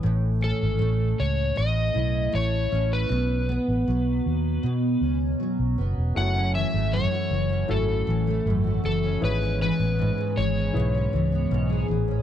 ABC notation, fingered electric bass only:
X:1
M:4/4
L:1/16
Q:1/4=78
K:F#dor
V:1 name="Fingered electric bass" clef=bass
A,,,3 G,,, A,,,2 C,,2 A,,,2 B,,,2 A,,,2 A,,,2 | B,,,3 A,,, B,,,2 D,,2 B,,2 C,,2 z B,,, F,,, E,,, | F,,,3 G,,,2 z F,,,2 G,,,2 A,,,2 G,,,2 F,,,2 | G,,,3 A,,,2 z G,,,2 B,,,2 C,,2 B,,,2 A,,,2 |]